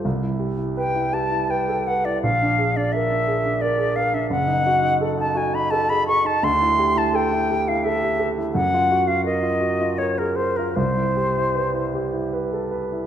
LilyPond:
<<
  \new Staff \with { instrumentName = "Flute" } { \time 3/4 \key c \lydian \tempo 4 = 84 r4 g''8 a''8 g''8 fis''16 d''16 | f''8. d''16 e''4 d''8 f''16 e''16 | fis''4~ fis''16 a''16 aes''16 b''16 a''16 b''16 cis'''16 a''16 | c'''8. a''16 g''8. f''16 e''8. r16 |
fis''8. eis''16 ees''4 cis''16 ais'16 c''16 ais'16 | c''2 r4 | }
  \new Staff \with { instrumentName = "Grand piano" } { \time 3/4 \key c \lydian c,16 e'16 g'16 e'16 b'16 e'16 g'16 e'16 b'16 a'16 b'16 e'16 | bes,,16 d'16 aes'16 d'16 bes'16 d'16 aes'16 d'16 bes'16 aes'16 bes'16 d'16 | fis,,16 dis'16 fis'16 dis'16 a'16 dis'16 fis'16 dis'16 a'16 aes'16 a'16 dis'16 | d,16 e'16 g'16 e'16 a'16 e'16 g'16 e'16 a'16 g'16 a'16 e'16 |
fis,16 eis'16 fis'16 eis'16 ais'16 eis'16 fis'16 eis'16 ais'16 aes'16 ais'16 eis'16 | c,16 e'16 g'16 e'16 b'16 e'16 g'16 e'16 b'16 a'16 b'16 e'16 | }
>>